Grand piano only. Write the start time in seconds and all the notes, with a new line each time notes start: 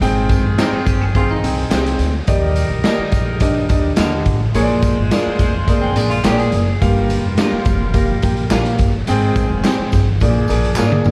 0.02 G#2 C4 G#4 G5
0.58 C4 G#4 G5
1.16 C4 G#4 G5
1.43 C4 G#4 G5
1.70 C4 G#4 G5
2.28 D#3 G4 D5 D#5
2.85 G4 D5 D#5
3.42 D4 G4 D#5
3.69 D4 G4 D#5
3.98 D3 G4 D#5
4.55 A#2 A#3 G#4 C#5
4.62 D5
5.12 A#3 G#4 D5
5.69 A#3 G#4 D5
5.97 A#3 G#4 D5
6.25 A#3 G#4 C#5
6.32 D5
6.82 G2 A#3 G4 F5
7.38 G#3 G4 F5
7.45 A#3
7.94 A#3 G4 F5
8.23 A#3 G4 G5
8.51 A#3 G4 F5
9.08 G#2 C4 G#4 G5
9.64 C4 G#4 G5
10.22 A#2 A#3 G#4 D5
10.49 A#3 G#4 D5
10.77 A#3 G#4 C#5
10.85 D5